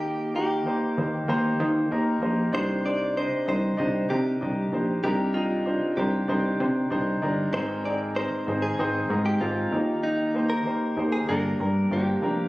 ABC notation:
X:1
M:4/4
L:1/16
Q:1/4=96
K:Cm
V:1 name="Clean electric guitar"
G2 G8 z6 | c2 d2 c2 c4 G6 | G2 F4 G6 z4 | c2 d2 c3 A4 G F4 |
E3 B4 A B4 G4 |]
V:2 name="Grand piano"
[B,EGB]2 [B,EGB]2 [B,EGc]2 [B,EGc]2 [B,EGc]2 [B,EGc]2 [B,EGBb]2 [B,EGce]2 | [DEGc]2 [DEGc]2 [DEGe]2 [DEGe]2 [DEGe]2 [DEGB]2 [DEGe]2 [DEGc]2 | [DEGB]2 [DEGe]2 [DEGc]2 [DEGc]2 [DEGc]2 [DEGc]2 [DEGc]2 [DEGB]2 | [CEAB]2 [CEAB]2 [CEAB]2 [CEAc]2 [CEAc]2 [CEAB]2 [CEAc]2 [B,EGB]2- |
[B,EGB]2 [B,EGc]2 [B,EGc]2 [B,EGc]2 [B,DGB]2 [B,DGB]2 [B,DGc]2 [B,DGB]2 |]
V:3 name="Grand piano" clef=bass
E,4 z12 | C,6 z8 z2 | C,6 z8 z2 | A,,6 z8 E,2- |
E,4 z4 G,,6 z2 |]
V:4 name="Analog synth bass" clef=bass
E,,4- E,, z E,,2 E,,2 E,2 E,,2 B,,,2 | C,,4- C,, z C,,2 C,,2 C,2 C,,2 B,,,2 | C,,4- C,, z C,,2 C,,2 C,2 C,,2 G,,,2 | A,,,4- A,,, z A,,,2 A,,,2 A,,2 A,,,2 E,,2- |
E,,4- E,, z E,,2 G,,,2 G,,2 G,,,2 F,,,2 |]